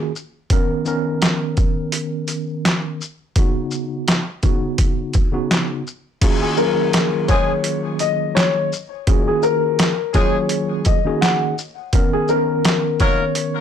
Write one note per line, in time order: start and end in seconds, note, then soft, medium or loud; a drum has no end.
0.00 0.10 D#3 loud
0.00 0.10 A#3 medium
0.00 0.11 C#4 medium
0.00 0.11 F4 medium
0.00 0.11 F#4 medium
0.00 0.11 G#4 loud
0.16 shaker medium
0.50 0.84 D#3 medium
0.50 0.84 B3 medium
0.50 0.84 C#4 medium
0.50 0.85 A#4 loud
0.50 kick loud
0.50 closed hi-hat medium
0.85 2.99 D#3 loud
0.85 3.00 B3 medium
0.85 3.00 C#4 medium
0.85 3.01 A#4 loud
0.85 shaker medium
1.22 snare loud
1.22 clap loud
1.22 closed hi-hat medium
1.57 kick medium
1.57 closed hi-hat soft
1.57 shaker soft
1.92 closed hi-hat medium
2.28 closed hi-hat medium
2.28 shaker medium
2.65 snare loud
2.65 clap loud
2.65 closed hi-hat medium
3.01 shaker medium
3.36 4.20 C#3 medium
3.36 4.20 B3 medium
3.36 4.21 D#4 medium
3.36 4.21 F#4 loud
3.36 kick loud
3.36 closed hi-hat medium
3.71 shaker medium
4.08 snare loud
4.08 clap loud
4.08 closed hi-hat medium
4.43 5.27 C#3 medium
4.43 5.27 B3 medium
4.43 5.27 D#4 medium
4.43 5.28 F#4 loud
4.43 kick medium
4.43 closed hi-hat soft
4.43 shaker soft
4.78 kick medium
4.78 closed hi-hat medium
5.13 kick medium
5.13 closed hi-hat medium
5.13 shaker medium
5.32 5.81 C#3 medium
5.32 5.81 B3 medium
5.32 5.82 D#4 medium
5.32 5.82 F#4 medium
5.51 snare loud
5.51 clap loud
5.51 closed hi-hat medium
5.87 shaker medium
6.21 6.55 D#3 medium
6.21 6.55 A#3 medium
6.21 6.55 C#4 medium
6.21 6.55 F4 medium
6.21 6.56 F#4 medium
6.21 6.56 G#4 loud
6.21 kick loud
6.21 closed hi-hat medium
6.21 crash loud
6.42 6.56 G#4 medium
6.57 8.71 D#3 loud
6.57 8.72 F#3 medium
6.57 8.71 A#3 medium
6.57 8.71 C#4 medium
6.57 8.71 F4 medium
6.57 8.72 G#4 medium
6.57 7.25 A#4 medium
6.57 shaker medium
6.93 snare loud
6.93 clap loud
6.93 closed hi-hat medium
7.28 7.52 F3 medium
7.28 7.52 G#3 loud
7.28 7.52 C#4 medium
7.28 7.52 G#4 loud
7.28 7.96 C#5 medium
7.28 kick loud
7.28 closed hi-hat soft
7.28 shaker soft
7.64 closed hi-hat medium
7.99 8.32 D#5 medium
7.99 closed hi-hat medium
7.99 shaker medium
8.35 8.68 C#5 medium
8.35 snare loud
8.35 clap loud
8.35 closed hi-hat medium
8.73 shaker medium
9.07 9.91 D#3 loud
9.07 9.91 A#3 medium
9.07 9.91 C#4 medium
9.07 9.92 F4 medium
9.07 9.92 F#4 medium
9.07 9.92 G#4 loud
9.07 kick loud
9.07 closed hi-hat loud
9.28 9.42 G#4 medium
9.42 10.11 A#4 medium
9.42 shaker medium
9.79 snare loud
9.79 clap loud
9.79 closed hi-hat medium
10.13 10.98 D#3 medium
10.13 10.37 F3 medium
10.13 10.99 F#3 medium
10.13 10.37 G#3 loud
10.13 10.98 A#3 medium
10.13 10.37 C#4 loud
10.13 10.98 C#4 medium
10.13 10.99 F4 medium
10.13 10.37 G#4 loud
10.13 10.99 G#4 loud
10.13 10.82 C#5 medium
10.13 kick loud
10.13 closed hi-hat soft
10.13 shaker soft
10.49 closed hi-hat medium
10.85 11.18 D#5 medium
10.85 kick loud
10.85 closed hi-hat medium
10.85 shaker medium
11.05 11.53 D#3 loud
11.05 11.53 A#3 medium
11.05 11.54 C#4 medium
11.05 11.54 D#4 medium
11.05 11.54 F#4 medium
11.05 11.54 G#4 loud
11.21 11.54 F#5 medium
11.21 snare loud
11.21 clap loud
11.21 closed hi-hat medium
11.58 shaker medium
11.93 12.26 D#3 medium
11.93 12.27 B3 loud
11.93 12.27 C#4 medium
11.93 12.28 A#4 loud
11.93 kick loud
11.93 closed hi-hat medium
12.13 12.27 G#4 medium
12.28 13.61 D#3 loud
12.28 13.61 B3 medium
12.28 13.61 C#4 medium
12.28 12.97 A#4 medium
12.28 13.61 A#4 loud
12.28 shaker medium
12.65 snare loud
12.65 clap loud
12.65 closed hi-hat medium
13.00 13.23 F#3 medium
13.00 13.23 A#3 loud
13.00 13.23 D#4 loud
13.00 13.23 A#4 loud
13.00 13.61 C#5 medium
13.00 kick medium
13.00 closed hi-hat soft
13.00 shaker soft
13.35 closed hi-hat loud